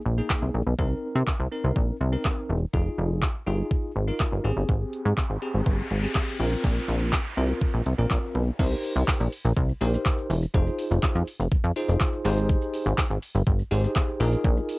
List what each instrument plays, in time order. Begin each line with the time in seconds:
0.06 analog synth bass A#1
0.18 tine electric piano A#3 D#4 G#4
0.30 kick, clap
0.42 analog synth bass C2
0.54 analog synth bass A#1
0.67 analog synth bass B1
0.79 analog synth bass C2, tine electric piano C4 D#4 A#4, kick
1.15 analog synth bass C3
1.27 kick, clap
1.40 analog synth bass C2
1.52 tine electric piano C4 D#4 A#4
1.64 analog synth bass C2
1.76 analog synth bass A#1, kick
2.01 analog synth bass C2
2.12 tine electric piano C4 D#4 A#4
2.25 kick, clap
2.49 analog synth bass E1
2.73 analog synth bass F1, tine electric piano D#4 F4 G#4, kick
2.98 analog synth bass F1
3.22 kick, clap
3.47 analog synth bass G1, tine electric piano D#4 F4 G#4
3.71 kick
3.96 analog synth bass G#1
4.08 tine electric piano D#4 F4 A#4
4.20 kick, clap
4.32 analog synth bass G1
4.44 analog synth bass G#1, tine electric piano C4 G4 G#4
4.57 analog synth bass G1
4.69 analog synth bass G#1, kick, closed hi-hat, noise sweep
4.93 closed hi-hat
5.05 analog synth bass G#2
5.18 kick, clap, closed hi-hat
5.30 analog synth bass G#1
5.42 tine electric piano C4 G4 G#4, closed hi-hat
5.54 analog synth bass G#1
5.66 analog synth bass G1, kick, closed hi-hat
5.91 analog synth bass G#1, closed hi-hat
6.03 tine electric piano C4 G4 G#4
6.15 kick, clap, closed hi-hat
6.40 analog synth bass A#1, tine electric piano C4 F4 A#4, closed hi-hat
6.64 analog synth bass A#1, kick, closed hi-hat
6.88 analog synth bass A#1, closed hi-hat
7.13 kick, clap, closed hi-hat
7.37 analog synth bass C2, tine electric piano C4 F4 A#4, closed hi-hat
7.61 kick, closed hi-hat
7.74 analog synth bass A#1
7.86 analog synth bass C2, closed hi-hat
7.98 analog synth bass A#1, tine electric piano C4 F4 A#4
8.10 analog synth bass A#1, kick, clap, closed hi-hat
8.35 analog synth bass B1, closed hi-hat
8.59 analog synth bass C2, tine electric piano D#4 G4 A#4 C5, kick, closed hi-hat, crash, shaker
8.72 shaker
8.84 open hi-hat, shaker
8.96 analog synth bass C2, shaker
9.08 kick, clap, closed hi-hat, shaker
9.20 analog synth bass A#1, shaker
9.32 open hi-hat, shaker
9.45 analog synth bass A#1, shaker
9.57 analog synth bass C2, kick, closed hi-hat, shaker
9.69 shaker
9.81 analog synth bass A#1, tine electric piano D#4 G4 A#4 C5, open hi-hat, shaker
9.94 shaker
10.06 kick, clap, closed hi-hat, shaker
10.18 shaker
10.30 analog synth bass E1, open hi-hat, shaker
10.42 shaker
10.54 analog synth bass F1, tine electric piano D#4 F4 G#4 C5, kick, closed hi-hat, shaker
10.67 shaker
10.79 open hi-hat, shaker
10.91 analog synth bass F1, shaker
11.03 kick, clap, closed hi-hat, shaker
11.15 analog synth bass F2, shaker
11.27 open hi-hat, shaker
11.40 analog synth bass F1, shaker
11.52 kick, closed hi-hat, shaker
11.64 analog synth bass F2, shaker
11.76 tine electric piano D#4 F4 G#4 C5, open hi-hat, shaker
11.88 analog synth bass F1, shaker
12.00 kick, clap, closed hi-hat, shaker
12.13 shaker
12.25 analog synth bass G#1, tine electric piano D#4 G4 G#4 C5, open hi-hat, shaker
12.37 shaker
12.49 kick, closed hi-hat, shaker
12.62 shaker
12.74 open hi-hat, shaker
12.86 analog synth bass G#1, shaker
12.98 kick, clap, closed hi-hat, shaker
13.10 analog synth bass G#1, shaker
13.22 open hi-hat, shaker
13.35 analog synth bass G1, shaker
13.47 analog synth bass G1, kick, closed hi-hat, shaker
13.59 shaker
13.71 analog synth bass G#1, tine electric piano D#4 G4 G#4 C5, open hi-hat, shaker
13.84 shaker
13.96 kick, clap, closed hi-hat, shaker
14.08 shaker
14.20 analog synth bass A#1, tine electric piano D#4 F4 G#4 A#4, open hi-hat, shaker
14.32 shaker
14.44 analog synth bass A#1, kick, closed hi-hat, shaker
14.57 shaker
14.69 open hi-hat, shaker